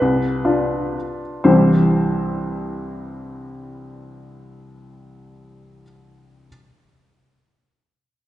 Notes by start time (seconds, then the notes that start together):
Already playing: B4
0.01 C2
0.45 D4 F4
1.44 C2 G2 E3 G3 C4 E4 C5